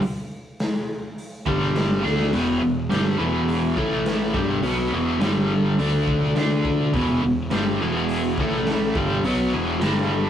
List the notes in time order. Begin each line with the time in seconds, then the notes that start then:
0.02 open hi-hat
0.59 snare, open hi-hat
1.18 open hi-hat
1.46 G1 G2 D3 G3, kick
1.61 snare
1.75 snare, open hi-hat
1.90 snare
2.03 D2 D3 A3 D4, snare
2.19 snare
2.33 E1 E2 B2 E3, open hi-hat, splash
2.62 E1 E2 B2
2.90 G1 G2 D3 G3, snare, open hi-hat
3.18 E1 E2 B2 E3
3.48 open hi-hat
3.77 A1 A2 E3 A3, kick
4.06 snare, open hi-hat
4.21 snare
4.34 G1 G2 D3 G3, kick
4.63 B1 B2 F#3 B3, open hi-hat
4.92 E1 E2 B2 E3
5.20 G1 G2 D3 G3, snare, open hi-hat
5.78 D2 D3 A3 D4, open hi-hat
6.08 kick
6.23 snare
6.36 D2 D3 A3 D4, snare, open hi-hat
6.65 kick
6.93 E1 E2 B2 E3, kick, open hi-hat
7.23 E1 E2 B2
7.50 G1 G2 D3 G3, snare, open hi-hat
7.81 E1 E2 B2 E3
8.08 open hi-hat
8.38 A1 A2 E3 A3, kick
8.53 snare
8.66 snare, open hi-hat
8.82 snare
8.95 G1 G2 D3 G3, kick
9.24 B1 B2 F#3 B3, open hi-hat
9.53 E1 E2 B2 E3
9.81 G1 G2 D3 G3, snare, open hi-hat